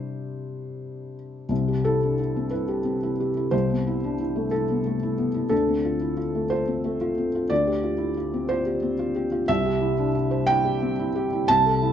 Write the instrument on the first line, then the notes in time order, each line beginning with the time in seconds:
felt piano
Already playing: C3 G3 D4 E4 C5
1.49 C2 C3
1.68 G4
1.84 E4 A4
2.03 D4
2.19 E4
2.36 C4
2.51 E4 B4
2.68 G4
2.85 C4
3.03 E4
3.20 G4
3.37 E4
3.51 C2 C3 C5
3.69 B3
3.87 E4
4.04 D4
4.20 E4
4.36 A3
4.51 E4 A4
4.69 B3
4.86 A3
5.03 E4
5.18 B3
5.34 E4
5.49 D2 D3 A4
5.68 C4
5.85 F4
6.01 E4
6.17 F4
6.35 A3
6.50 F4 C5
6.67 C4
6.84 A3
7.01 F4
7.18 C4
7.35 F4
7.50 D2 D3 D5
7.67 G4
7.83 F4
7.98 E4
8.17 F4
8.34 C4
8.49 F4 C5
8.66 G4
8.82 C4
8.99 F4
9.16 G4
9.32 F4
9.48 C2 C3 E5
9.66 G4
9.81 E4
9.98 D4
10.15 E4
10.31 C5
10.47 E4 G5
10.65 G4
10.82 C4
10.99 E4
11.15 G4
11.32 E4
11.48 C2 C3 A5
11.66 A4
11.82 E4